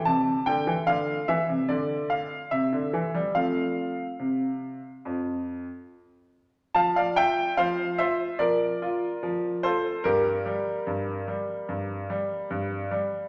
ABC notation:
X:1
M:4/4
L:1/16
Q:1/4=73
K:F
V:1 name="Grand piano"
a2 g2 f2 e2 d2 f2 e4 | f12- f2 z2 | [fa] [df] [eg]2 [cf]2 [ce]2 [Bd]6 [Ac]2 | [GB]12- [GB]2 z2 |]
V:2 name="Grand piano" clef=bass
C,2 D, E, D,2 E, C, D,4 C, D, E, G, | [F,A,C]4 C,4 F,,4 z4 | F,2 F2 F,2 F2 F,2 F2 F,2 F2 | G,,2 G,2 G,,2 G,2 G,,2 G,2 G,,2 G,2 |]